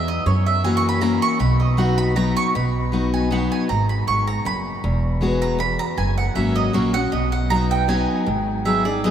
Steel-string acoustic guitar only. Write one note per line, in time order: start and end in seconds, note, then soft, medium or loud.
0.00 0.24 E2 loud
0.26 0.99 F#2 loud
0.64 1.00 E3 medium
0.64 1.00 A#3 loud
0.64 1.01 C#4 medium
0.64 1.01 F#4 medium
1.01 1.38 E3 loud
1.01 1.38 A#3 loud
1.01 1.38 C#4 loud
1.01 1.39 F#4 loud
1.39 2.12 B2 medium
1.77 2.14 F#3 medium
1.77 2.14 B3 medium
1.77 2.15 D#4 medium
1.77 2.15 F#4 loud
2.16 2.52 F#3 loud
2.16 2.53 B3 loud
2.16 2.53 D#4 loud
2.16 2.53 F#4 loud
2.55 3.28 B2 medium
2.92 3.29 F#3 medium
2.92 3.29 B3 medium
2.92 3.29 D#4 medium
2.92 3.30 F#4 medium
3.30 3.67 F#3 medium
3.30 3.67 B3 loud
3.30 3.68 D#4 loud
3.30 3.68 F#4 loud
3.69 4.06 G#2 medium
4.07 4.44 G#2 medium
4.45 4.82 F#2 loud
4.84 5.57 E2 loud
5.21 5.58 E3 medium
5.21 5.58 G#3 medium
5.21 5.58 B3 medium
5.21 5.59 F#4 loud
5.59 5.96 E2 loud
5.97 6.71 F#2 medium
6.35 6.72 F#3 medium
6.35 6.73 A#3 medium
6.35 6.73 C#4 medium
6.35 6.73 F#4 medium
6.73 6.93 F#3 loud
6.73 6.94 A#3 loud
6.73 6.94 C#4 loud
6.73 6.92 F#4 loud
6.93 7.12 C#4 soft
6.93 7.11 F#4 medium
7.12 7.85 B2 loud
7.50 7.87 F#3 medium
7.50 7.87 B3 medium
7.50 7.88 D#4 loud
7.50 7.88 F#4 loud
7.88 8.25 F#3 medium
7.88 8.26 B3 loud
7.88 8.26 D#4 loud
7.88 8.26 F#4 loud
8.26 9.00 G#2 medium
8.65 8.85 F#3 medium
8.65 8.85 B3 medium
8.65 8.85 D#4 medium
8.65 8.84 G#4 medium
8.85 9.04 D#4 medium
8.85 9.03 G#4 medium
9.04 9.11 F#3 loud
9.04 9.11 B3 medium
9.04 9.11 D#4 loud
9.04 9.11 G#4 loud